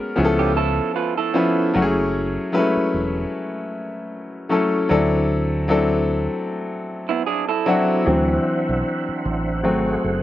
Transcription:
Already playing: grand piano G#3 B3 C#4 F#4 A#4
0.16 fingered electric bass C#2, grand piano F3 B3 C#4 E4 G#4
0.24 grand piano A4
0.39 clean electric guitar C#4 G4
0.57 clean electric guitar E4 A4
0.96 clean electric guitar F4 B4
1.17 clean electric guitar E4 A4
1.34 grand piano F3 B3 C#4 E4 B4
1.74 fingered electric bass F#1, grand piano F#3 A3 C#4 E4 F#4
1.82 grand piano G#4
2.52 grand piano F#3 G#3 C#4 E4 B4
2.59 grand piano A3
2.77 muted fingered electric bass stroke
2.94 fingered electric bass E1
4.49 grand piano F#3 A3 C#4 E4 A4
4.89 fingered electric bass D2, grand piano F#3 C4 D4 E4 A4
5.68 grand piano F#3 C4 D4 E4 A4
7.09 clean electric guitar B3 E4
7.26 clean electric guitar D4 G#4
7.49 clean electric guitar E4 A4
7.66 grand piano F#3 C4 D4 E4 F#4
8.05 fingered electric bass D2, grand piano E3 F#3 C4, tonewheel organ D4 C5 E5 F#5
8.69 fingered electric bass B1
9.09 muted fingered electric bass stroke
9.25 fingered electric bass A1
9.63 fingered electric bass G#1, grand piano F#3 A3 C4, tonewheel organ A3 G#4
10.04 fingered electric bass F#1

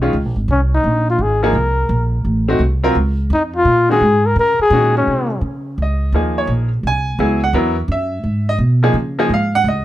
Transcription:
Already playing: upright bass B1
0.02 upright piano D#3 G#3 C#4 F4
0.13 upright bass C#2
0.25 upright bass A#1
0.36 upright bass G#1
0.48 upright bass C2, flugelhorn C#4
0.74 flugelhorn D#4
0.84 upright bass A#1
1.10 flugelhorn F4
1.19 upright bass G#1, flugelhorn G#4
1.43 upright piano F3 A#3 D#4 G#4, flugelhorn A#4
1.53 upright bass C2
1.89 upright bass A#1
2.25 upright bass A1
2.48 upright piano A3 C4 D#4 F#4
2.59 upright bass C2
2.84 upright piano F#3 C4 F4 A#4
2.95 upright bass C#2
3.30 upright bass F2, flugelhorn D#4
3.56 flugelhorn F4
3.65 upright bass A#2
3.89 upright piano D#3 G#3 C#4 F#4, flugelhorn G#4
4.01 upright bass G#2
4.26 flugelhorn A#4
4.36 upright bass C#3, flugelhorn A#4
4.59 flugelhorn G#4, muted upright bass stroke
4.70 upright bass A#2, upright piano D#3 G#3 C#4 F#4
4.97 flugelhorn C#4
5.07 upright bass C3
5.41 upright bass C#3
5.78 upright bass C#2
5.82 upright piano D#5
6.12 upright bass D#2, upright piano F3 A#3 D#4 G#4
6.38 upright piano C#5
6.47 upright bass A#1
6.83 upright bass C2, upright piano G#5
7.19 upright bass C#2, upright piano F#3 B3 E4 G#4
7.44 upright piano F#5
7.53 upright bass E2, upright piano F#3 B3 E4 A#4
7.88 upright bass F#2, upright piano E5
8.24 upright bass G#2
8.49 upright piano D#5
8.59 upright bass B2
8.83 upright piano F3 A#3 D#4 G#4
8.93 upright bass C#3
9.19 upright piano F3 A#3 D#4 G#4 D#5
9.29 upright bass G#2
9.34 upright piano F5
9.55 upright piano F#5
9.64 upright bass C#2
9.68 upright piano D#5

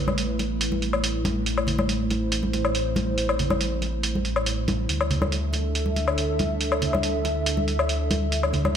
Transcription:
Already playing: detuned saw bass A1, analog synth pad A3 E4 B4
0.08 high conga, low woodblock
0.18 closed hi-hat
0.39 closed hi-hat, muted conga
0.61 closed hi-hat
0.72 high conga
0.82 closed hi-hat
0.93 low woodblock
1.04 closed hi-hat
1.25 closed hi-hat, high conga
1.46 analog synth pad C5, closed hi-hat
1.57 low woodblock
1.67 closed hi-hat, low conga
1.79 high conga, low woodblock
1.89 closed hi-hat
2.10 closed hi-hat, muted conga
2.32 closed hi-hat
2.43 high conga
2.53 closed hi-hat, muted conga
2.65 low woodblock
2.75 closed hi-hat
2.96 closed hi-hat, high conga
3.18 closed hi-hat
3.29 low woodblock
3.39 closed hi-hat, low conga
3.50 high conga, low woodblock
3.61 closed hi-hat
3.82 closed hi-hat, muted conga
4.03 closed hi-hat
4.15 high conga
4.25 closed hi-hat
4.36 low woodblock
4.46 closed hi-hat
4.68 closed hi-hat, high conga
4.89 detuned saw bass D2, analog synth pad D4 A4 E5, closed hi-hat
5.01 low woodblock
5.10 closed hi-hat, low conga
5.22 high conga, low woodblock
5.32 closed hi-hat
5.53 closed hi-hat, muted conga
5.75 closed hi-hat
5.86 high conga
5.96 closed hi-hat, muted conga
6.08 low woodblock
6.18 closed hi-hat
6.39 closed hi-hat, high conga
6.61 closed hi-hat
6.72 low woodblock
6.82 closed hi-hat, low conga
6.93 high conga, low woodblock
7.03 closed hi-hat
7.25 closed hi-hat, muted conga
7.46 closed hi-hat
7.57 high conga
7.68 closed hi-hat
7.79 low woodblock
7.89 closed hi-hat
8.11 closed hi-hat, high conga
8.32 closed hi-hat
8.43 low woodblock
8.53 closed hi-hat, low conga
8.65 high conga, low woodblock

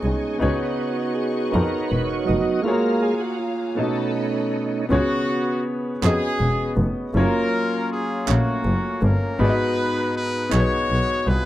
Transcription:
Already playing: grand piano B2 B3 D#4 F#4 G#4 C#5 D#5, tonewheel organ G#4, string section D#5 G#5 C#6
0.03 double bass C2, tonewheel organ G#3 C#4 D#4
0.38 double bass C#2, grand piano C#3 B3 D#4 F#4 G#4, tonewheel organ B3 F#4
0.42 tonewheel organ D#4, grand piano C#5, string section C#5 C#6
1.15 tonewheel organ G#4
1.51 double bass F2, grand piano B3 D#4 F#4 G#4, tonewheel organ A#4
1.55 grand piano A#4
1.88 double bass E1, tonewheel organ B4
2.07 tonewheel organ C#5
2.25 tonewheel organ F#3 B3 D#4 D#5
2.30 double bass F1
2.62 tonewheel organ G#3 A#3 A#4 F5, grand piano A3 F4 F#4
2.66 grand piano G#4 C#5, string section F5 G#5 A#5
2.71 grand piano A#3
3.02 tonewheel organ G#4
3.20 tonewheel organ F#4
3.39 tonewheel organ F4
3.75 grand piano B2 B3 D#4 F#4, tonewheel organ A3 C#4 D#4 A4
3.79 grand piano A4 D#5, string section D#5 A5 B5
4.89 double bass C#2, grand piano C#3 B3 C#4 F4 G#4 C#5, horn section B3 F#4
4.97 grand piano F#4
6.02 double bass F2, grand piano B3 C#4 F#4 G#4, horn section G#4, clap
6.06 horn section B3, grand piano D#5
6.40 double bass E1
6.78 double bass F1
7.13 double bass F#1, grand piano F#3 A3 C#4 F4 C#5
7.18 grand piano A#3, horn section C#4 F4 A#4
7.91 horn section G#4
8.26 double bass A#1, grand piano A3 C#4 F#4 C#5 F5, horn section F#4, clap
8.30 horn section A#3 C#4, grand piano A#3
8.65 double bass F#1
9.02 double bass G1, horn section A#4
9.39 double bass G#1, grand piano G#2 B3 D#4 F#4 G#4 D5, horn section D#4 F#4 B4
9.50 grand piano D#5
10.15 horn section B4
10.49 double bass B1, grand piano B3 D#4 F#4 G#4, horn section F#4 C#5, clap
10.54 grand piano B4
10.60 grand piano C#5
10.90 double bass B1
11.26 double bass C2, horn section F4 G#4 B4

